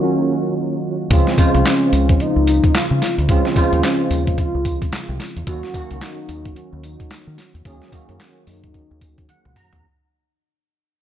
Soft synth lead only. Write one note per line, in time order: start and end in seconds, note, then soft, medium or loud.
0.03 0.80 C#4 medium
1.12 1.62 C#4 loud
1.67 2.23 C#4 medium
2.21 2.48 D#4 loud
2.48 2.73 D#4 loud
2.75 3.16 F4 loud
3.30 3.80 C#4 loud
3.85 4.35 C#4 medium
4.39 4.90 F4 loud
5.48 5.98 F#4 loud
6.02 6.58 D#4 loud
6.57 6.86 C#4 medium
6.84 7.38 D#4 loud
7.66 7.91 C#4 medium
7.93 8.18 C#4 medium
8.20 8.49 C#4 loud
8.48 9.29 D#4 loud